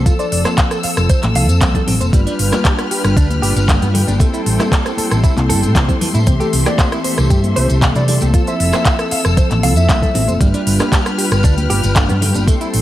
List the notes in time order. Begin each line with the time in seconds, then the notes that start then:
Already playing: A4
0.05 F3 C4 F4 A4 E6, kick, closed hi-hat, tambourine
0.19 C5 D5, closed hi-hat, tambourine
0.32 F1 D5, open hi-hat
0.45 C5, cross-stick, clap, closed hi-hat, tambourine, high conga
0.58 F5, kick, clap, closed hi-hat, tambourine
0.71 A4, cross-stick, closed hi-hat, tambourine
0.83 F5, muted fingered electric bass stroke, open hi-hat
0.97 F1, cross-stick, closed hi-hat, tambourine
1.09 C5, kick, closed hi-hat, tambourine
1.23 A1, clap, closed hi-hat, tambourine, high conga
1.35 C2 F3 C4 E4 A4 F5, open hi-hat
1.48 F2 F3 C4 A4, closed hi-hat, tambourine
1.61 C2 C4, kick, clap, closed hi-hat, tambourine, high conga
1.75 A4, kick, closed hi-hat, tambourine, low conga
1.87 A1 C4, open hi-hat, low conga
2.01 F1 C5, closed hi-hat, tambourine, high conga
2.12 G1 G3 D4 F4 B4 G5 F6, kick, closed hi-hat, tambourine
2.27 D4, closed hi-hat, tambourine
2.39 G1, open hi-hat
2.52 D4, cross-stick, clap, closed hi-hat, tambourine, high conga
2.65 G4, kick, clap, closed hi-hat, tambourine
2.79 B3, cross-stick, closed hi-hat, tambourine
2.91 G4, open hi-hat
3.04 G1, cross-stick, closed hi-hat, tambourine
3.17 D2 D4, kick, closed hi-hat, tambourine
3.30 closed hi-hat, tambourine, high conga
3.42 G1 G3 D4 F4 G4 B4, open hi-hat
3.55 G1 G3 D4 F4 B4, closed hi-hat, tambourine
3.68 D3, kick, clap, closed hi-hat, tambourine, high conga
3.82 G2 B3, closed hi-hat, tambourine, low conga
3.94 D3, open hi-hat, low conga
4.08 G1 D4, closed hi-hat, tambourine, high conga
4.19 G3 A3 C4 E4 A4 C6, kick, closed hi-hat, tambourine
4.33 E4, closed hi-hat, tambourine
4.46 A1, open hi-hat
4.60 E4, cross-stick, clap, closed hi-hat, tambourine, high conga
4.72 A4, kick, clap, closed hi-hat, tambourine
4.85 C4, cross-stick, closed hi-hat, tambourine
4.97 A4, muted fingered electric bass stroke, open hi-hat, high conga
5.11 A1, cross-stick, closed hi-hat, tambourine
5.24 E4, kick, closed hi-hat, tambourine
5.37 C2, clap, closed hi-hat, tambourine, high conga
5.49 G1 G3 C4 E4 A4, open hi-hat
5.62 A2 G3 C4 E4 A4, closed hi-hat, tambourine
5.75 C2 E3, kick, clap, closed hi-hat, tambourine, high conga
5.88 C4, kick, closed hi-hat, tambourine, low conga
6.01 E3, muted fingered electric bass stroke, open hi-hat, low conga
6.14 A2 E4, closed hi-hat, tambourine, high conga
6.26 C2 E3 A3 C4 G4 A4 E5, kick, closed hi-hat, tambourine
6.40 G4 A4, closed hi-hat, tambourine
6.53 C2, open hi-hat
6.66 G4 D5, cross-stick, clap, closed hi-hat, tambourine, high conga
6.78 C5, kick, clap, closed hi-hat, tambourine
6.92 E4, cross-stick, closed hi-hat, tambourine
7.04 C5, open hi-hat, high conga
7.18 C2, cross-stick, closed hi-hat, tambourine
7.30 G2 G4, kick, closed hi-hat, tambourine
7.43 closed hi-hat, tambourine, high conga
7.56 C2 E3 A3 C4 G4 C5, open hi-hat
7.69 C2 E3 A3 C4 G4, closed hi-hat, tambourine
7.82 G3, kick, clap, closed hi-hat, tambourine, high conga
7.95 C3 E4 D5, closed hi-hat, tambourine, low conga
8.08 G3 D5, open hi-hat, low conga
8.21 C2 G4, closed hi-hat, tambourine, high conga
8.33 F3 C4 F4 A4 E6, kick, closed hi-hat, tambourine
8.47 C5 E5, closed hi-hat, tambourine
8.60 F1, open hi-hat
8.73 C5, cross-stick, clap, closed hi-hat, tambourine, high conga
8.85 F5, kick, clap, closed hi-hat, tambourine
8.99 A4, cross-stick, closed hi-hat, tambourine
9.11 F5, muted fingered electric bass stroke, open hi-hat
9.25 F1, cross-stick, tambourine
9.37 C5, kick, closed hi-hat, tambourine
9.50 A1, clap, closed hi-hat, tambourine, high conga
9.62 C2 F3 C4 E4 A4 F5, open hi-hat
9.75 F2 F3 C4 A4 E5, closed hi-hat, tambourine
9.89 C2 C4, kick, clap, closed hi-hat, tambourine, high conga
10.02 A4, kick, closed hi-hat, tambourine, low conga
10.14 A1 C4, open hi-hat, low conga
10.27 F1 C5, closed hi-hat, tambourine, high conga
10.40 G1 G3 D4 F4 B4 G5 F6, kick, closed hi-hat, tambourine
10.54 D4, closed hi-hat, tambourine
10.67 G1, open hi-hat
10.80 D4, cross-stick, clap, closed hi-hat, tambourine, high conga
10.92 G4, kick, clap, closed hi-hat, tambourine
11.06 B3, cross-stick, closed hi-hat, tambourine
11.18 G4, open hi-hat
11.32 G1, cross-stick, closed hi-hat, tambourine
11.43 D2 D4, kick, closed hi-hat, tambourine
11.57 closed hi-hat, tambourine, high conga
11.70 G1 G3 D4 F4 G4 B4, open hi-hat
11.83 G1 G3 D4 F4 B4, closed hi-hat, tambourine
11.96 D3, kick, clap, closed hi-hat, tambourine, high conga
12.09 G2 B3, closed hi-hat, tambourine, low conga
12.21 D3, open hi-hat, low conga
12.34 G1 D4, closed hi-hat, tambourine, high conga
12.46 G3 A3 C4 E4 A4 C6, kick, closed hi-hat, tambourine
12.61 E4, closed hi-hat, tambourine
12.74 A1, open hi-hat